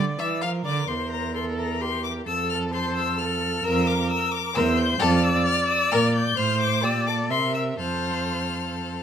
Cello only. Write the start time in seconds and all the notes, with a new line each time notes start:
Already playing: D3
0.20 E3
0.44 F3
0.66 D3
0.90 E2
2.28 F2
3.65 F2
4.55 E2
5.00 F2
5.92 A#2
6.37 A2
6.83 A#2
7.30 C3
7.79 F2